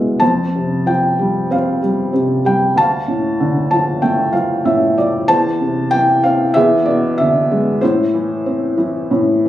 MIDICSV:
0, 0, Header, 1, 2, 480
1, 0, Start_track
1, 0, Key_signature, 0, "minor"
1, 0, Tempo, 648649
1, 158, Time_signature, 4, 2, 24, 8
1, 1593, Tempo, 630915
1, 6393, Tempo, 663717
1, 7135, End_track
2, 0, Start_track
2, 0, Title_t, "Felt piano"
2, 0, Program_c, 0, 0
2, 0, Control_c, 0, 64, 127
2, 0, Note_on_c, 0, 40, 53
2, 0, Note_on_c, 0, 47, 42
2, 0, Note_on_c, 0, 52, 49
2, 0, Note_on_c, 0, 56, 39
2, 0, Note_on_c, 0, 59, 49
2, 0, Note_on_c, 0, 68, 43
2, 0, Note_on_c, 0, 76, 58
2, 0, Note_on_c, 0, 77, 65
2, 128, Note_off_c, 0, 68, 0
2, 129, Note_off_c, 0, 40, 0
2, 129, Note_off_c, 0, 59, 0
2, 142, Note_off_c, 0, 47, 0
2, 145, Note_on_c, 0, 81, 78
2, 151, Note_off_c, 0, 56, 0
2, 159, Note_on_c, 0, 72, 56
2, 160, Note_on_c, 0, 41, 50
2, 166, Note_off_c, 0, 76, 0
2, 166, Control_c, 0, 64, 0
2, 167, Note_off_c, 0, 52, 0
2, 171, Note_off_c, 0, 77, 0
2, 304, Control_c, 0, 64, 127
2, 410, Note_on_c, 0, 48, 41
2, 637, Note_on_c, 0, 53, 45
2, 643, Note_on_c, 0, 79, 72
2, 653, Note_off_c, 0, 81, 0
2, 879, Note_on_c, 0, 55, 49
2, 1092, Note_off_c, 0, 72, 0
2, 1115, Note_on_c, 0, 60, 48
2, 1124, Note_on_c, 0, 77, 58
2, 1134, Note_on_c, 0, 72, 40
2, 1135, Note_off_c, 0, 79, 0
2, 1333, Note_off_c, 0, 48, 0
2, 1337, Note_off_c, 0, 55, 0
2, 1348, Note_on_c, 0, 55, 43
2, 1560, Note_off_c, 0, 53, 0
2, 1564, Note_off_c, 0, 77, 0
2, 1578, Note_on_c, 0, 48, 46
2, 1807, Note_off_c, 0, 55, 0
2, 1818, Note_on_c, 0, 55, 48
2, 1828, Note_on_c, 0, 79, 72
2, 2037, Note_off_c, 0, 60, 0
2, 2041, Note_off_c, 0, 41, 0
2, 2046, Note_off_c, 0, 72, 0
2, 2047, Note_off_c, 0, 48, 0
2, 2050, Note_on_c, 0, 38, 52
2, 2055, Note_off_c, 0, 55, 0
2, 2067, Note_on_c, 0, 81, 87
2, 2075, Note_off_c, 0, 79, 0
2, 2079, Control_c, 0, 64, 0
2, 2086, Note_on_c, 0, 77, 65
2, 2214, Control_c, 0, 64, 127
2, 2297, Note_on_c, 0, 45, 44
2, 2543, Note_on_c, 0, 50, 53
2, 2765, Note_off_c, 0, 81, 0
2, 2776, Note_on_c, 0, 81, 64
2, 2779, Note_on_c, 0, 53, 50
2, 2999, Note_off_c, 0, 81, 0
2, 3013, Note_on_c, 0, 79, 66
2, 3017, Note_on_c, 0, 57, 54
2, 3223, Note_off_c, 0, 45, 0
2, 3235, Note_off_c, 0, 77, 0
2, 3236, Note_off_c, 0, 53, 0
2, 3236, Note_off_c, 0, 79, 0
2, 3247, Note_on_c, 0, 77, 62
2, 3248, Note_on_c, 0, 53, 52
2, 3467, Note_off_c, 0, 50, 0
2, 3475, Note_off_c, 0, 77, 0
2, 3495, Note_on_c, 0, 45, 49
2, 3496, Note_on_c, 0, 76, 63
2, 3721, Note_off_c, 0, 76, 0
2, 3731, Note_off_c, 0, 53, 0
2, 3742, Note_on_c, 0, 53, 48
2, 3743, Note_on_c, 0, 74, 65
2, 3937, Note_off_c, 0, 38, 0
2, 3948, Note_off_c, 0, 57, 0
2, 3962, Note_off_c, 0, 45, 0
2, 3963, Note_off_c, 0, 74, 0
2, 3972, Note_off_c, 0, 53, 0
2, 3973, Note_on_c, 0, 81, 95
2, 3979, Note_on_c, 0, 72, 72
2, 3980, Note_on_c, 0, 40, 56
2, 3988, Control_c, 0, 64, 0
2, 4111, Control_c, 0, 64, 127
2, 4220, Note_on_c, 0, 48, 51
2, 4450, Note_on_c, 0, 79, 98
2, 4467, Note_on_c, 0, 52, 59
2, 4473, Note_off_c, 0, 81, 0
2, 4681, Note_off_c, 0, 79, 0
2, 4699, Note_on_c, 0, 77, 80
2, 4711, Note_on_c, 0, 60, 57
2, 4914, Note_off_c, 0, 72, 0
2, 4916, Note_off_c, 0, 40, 0
2, 4924, Note_off_c, 0, 48, 0
2, 4930, Note_on_c, 0, 76, 87
2, 4933, Note_off_c, 0, 52, 0
2, 4939, Note_on_c, 0, 68, 59
2, 4941, Note_off_c, 0, 60, 0
2, 4949, Note_off_c, 0, 77, 0
2, 4949, Note_on_c, 0, 40, 70
2, 4956, Control_c, 0, 64, 0
2, 5088, Control_c, 0, 64, 127
2, 5171, Note_on_c, 0, 74, 80
2, 5184, Note_on_c, 0, 47, 50
2, 5185, Note_off_c, 0, 76, 0
2, 5416, Note_on_c, 0, 76, 86
2, 5428, Note_off_c, 0, 74, 0
2, 5434, Note_on_c, 0, 50, 53
2, 5673, Note_on_c, 0, 56, 57
2, 5879, Note_off_c, 0, 68, 0
2, 5885, Note_off_c, 0, 40, 0
2, 5889, Note_off_c, 0, 47, 0
2, 5898, Note_on_c, 0, 72, 81
2, 5900, Note_off_c, 0, 50, 0
2, 5905, Note_off_c, 0, 56, 0
2, 5910, Note_on_c, 0, 64, 50
2, 5914, Note_on_c, 0, 45, 61
2, 5920, Note_off_c, 0, 76, 0
2, 5920, Control_c, 0, 64, 0
2, 6047, Control_c, 0, 64, 127
2, 6150, Note_on_c, 0, 52, 57
2, 6392, Note_on_c, 0, 60, 55
2, 6609, Note_off_c, 0, 52, 0
2, 6620, Note_on_c, 0, 52, 60
2, 6850, Note_off_c, 0, 45, 0
2, 6861, Note_on_c, 0, 45, 60
2, 7102, Note_off_c, 0, 52, 0
2, 7113, Note_on_c, 0, 52, 54
2, 7135, Note_off_c, 0, 45, 0
2, 7135, Note_off_c, 0, 52, 0
2, 7135, Note_off_c, 0, 60, 0
2, 7135, Note_off_c, 0, 64, 0
2, 7135, Note_off_c, 0, 72, 0
2, 7135, End_track
0, 0, End_of_file